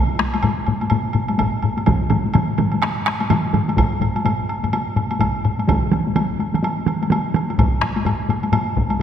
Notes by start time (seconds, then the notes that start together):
0.19 taiko rim, taiko high
0.34 taiko high, high woodblock
0.43 taiko low-mid, taiko high, high woodblock
0.67 taiko low-mid, taiko high, high woodblock
0.81 taiko high, high woodblock
0.90 taiko low-mid, taiko high, high woodblock
1.13 taiko low-mid, taiko high, high woodblock
1.28 taiko high, high woodblock
1.38 taiko, taiko low-mid, taiko high, high woodblock
1.62 taiko low-mid, high woodblock
1.77 taiko high, high woodblock
1.86 taiko, taiko low-mid, taiko mid, taiko high, high woodblock
2.10 taiko low-mid, taiko mid, taiko high, high woodblock
2.26 taiko high
2.34 taiko low-mid, taiko mid, taiko high, high woodblock
2.58 taiko low-mid, taiko mid, taiko high, high woodblock
2.72 taiko high, high woodblock
2.82 taiko rim, taiko high, high woodblock
3.06 taiko rim, taiko high, high woodblock
3.20 taiko high, high woodblock
3.30 taiko low-mid, taiko mid, taiko high, high woodblock
3.53 taiko low-mid, taiko mid, taiko high, high woodblock
3.68 taiko high, high woodblock
3.77 taiko, taiko low-mid, taiko high, high woodblock
4.01 taiko low-mid, taiko high, high woodblock
4.16 taiko high, high woodblock
4.25 taiko low-mid, taiko high, high woodblock
4.49 high woodblock
4.63 taiko low-mid, taiko high, high woodblock
4.73 taiko high, high woodblock
4.96 taiko low-mid, taiko high, high woodblock
5.11 taiko high, high woodblock
5.20 taiko, taiko low-mid, taiko high, high woodblock
5.45 taiko low-mid, high woodblock
5.59 taiko high, high woodblock
5.68 taiko, taiko mid, taiko high, high woodblock
5.92 taiko mid, taiko high, high woodblock
6.07 taiko high
6.16 taiko mid, taiko high, high woodblock
6.39 taiko high, high woodblock
6.54 taiko mid, taiko high, high woodblock
6.63 taiko high, high woodblock
6.86 taiko mid, taiko high, high woodblock
7.02 taiko high, high woodblock
7.10 taiko mid, taiko high, high woodblock
7.34 taiko mid, high woodblock
7.50 taiko high, high woodblock
7.58 taiko, taiko low-mid, taiko high, high woodblock
7.82 taiko rim, taiko high, high woodblock
7.96 taiko high, high woodblock
8.05 taiko low-mid, taiko high, high woodblock
8.29 taiko low-mid, taiko high, high woodblock
8.43 taiko high, high woodblock
8.52 taiko low-mid, taiko high, high woodblock
8.76 taiko, taiko low-mid, taiko high
8.90 taiko high, high woodblock